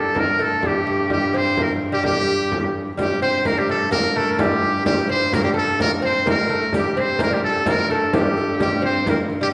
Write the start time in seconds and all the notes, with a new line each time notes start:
Already playing: G2 G3 A4
0.15 A#3 A#4, frame drum
0.19 A#4
0.39 A3 A4, frame drum
0.62 G3 G4, frame drum
0.87 A3
1.10 G3 G4, frame drum
1.34 C4 C5, frame drum
1.57 A#3 A#4, frame drum
1.62 A#4
1.92 G3 G4
2.03 G3 G4, frame drum
2.52 frame drum
2.75 frame drum
2.97 G2 G3 G4, riq, frame drum
3.22 C4 C5, frame drum
3.45 A#3 A#4, riq, frame drum
3.57 G3 G4
3.69 A3 A4, riq
3.91 A#3 A#4, riq, frame drum
4.16 A3 A4, frame drum
4.33 A4
4.38 G3 G4, riq, frame drum
4.63 riq
4.85 G3 G4, riq, frame drum
5.07 C4 C5, frame drum
5.32 A#3 A#4, riq, frame drum
5.43 G3 G4
5.54 A3 A4
5.58 riq
5.79 A#3 A#4, riq, frame drum
6.02 C4 C5
6.26 A#3 A#4, riq, frame drum
6.49 A3 A4, frame drum
6.71 G2 G3 G4, riq, frame drum
6.76 G4
6.96 C4 C5, frame drum
7.19 A#3 A#4, riq, frame drum
7.23 A#4
7.31 G3 G4
7.44 A4
7.66 A#3 A#4, riq, frame drum
7.90 A3 A4, frame drum
8.13 G3 G4, riq, frame drum
8.37 A4, riq
8.60 G3 G4, riq, frame drum
8.82 C4 C5, frame drum
9.06 A#3 A#4, riq, frame drum
9.29 riq
9.41 G3 G4